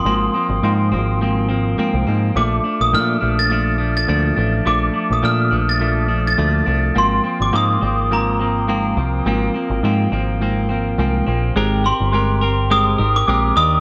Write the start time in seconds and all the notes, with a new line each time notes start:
0.05 G#1 G#2 F3 A#3 C4 C6
0.34 F3 A#3 C4
0.49 G#1
0.63 G#2 F3 A#3 C4
0.92 G#1 F3 A#3 C4
1.20 G#2 F3 A#3 C4
1.48 F3 A#3 C4
1.78 G#2 F3 A#3 C4, muted picked electric bass stroke
1.94 C2
2.07 G#2 F3 A#3 C4
2.35 A#1 A#2 F3 A3 D4 D6
2.64 F3 A3 D4
2.81 A#1 D#6
2.93 A#2 F3 A3 D4 F6
3.21 A#1 F3 A3 D4
3.39 A6
3.50 A#2 F3 A3 D4
3.78 F3 A3 D4
3.97 A6
4.08 D2 A#2 F3 A3 D4
4.36 A1 F3 A3 D4
4.65 A#1 A#2 F3 A3 D4 D6
4.94 F3 A3 D4
5.10 A#1 D#6
5.22 A#2 F3 A3 D4 F6
5.51 A#1 F3 A3 D4
5.69 A6
5.80 A#2 F3 A3 D4
6.08 F3 A3 D4
6.27 A6
6.38 D2 A#2 F3 A3 D4
6.66 C2 F3 A3 D4
6.95 G#1 G#2 F3 A#3 C4 C6
7.24 F3 A#3 C4
7.40 G#1 D6
7.52 G#2 F3 A#3 C4 D#6
7.81 G#1 F3 A#3 C4
8.10 G#2 F3 A#3 C4 A#5
8.39 F3 A#3 C4
8.68 G#2 F3 A#3 C4
8.97 C2 F3 A#3 C4
9.25 G#1 G#2 F3 A#3 C4
9.54 F3 A#3 C4
9.70 G#1
9.83 G#2 F3 A#3 C4
10.12 G#1 F3 A#3 C4
10.40 G#2 F3 A#3 C4
10.69 F3 A#3 C4
10.98 C2 G#2 F3 A#3 C4
11.26 A#1 F3 A#3 C4
11.56 G#1 G#3 C4 G4 A#4
11.84 C4 G4 A#4 C6
12.00 G1
12.13 G#3 C4 G4 A#4
12.42 C4 G4 A#4
12.71 G#3 C4 G4 A#4 D#6
12.98 G#1 C4 G4 A#4
13.16 D6
13.27 A#1 G#3 C4 G4 A#4
13.56 D#2 D4 G4 A#4 D#6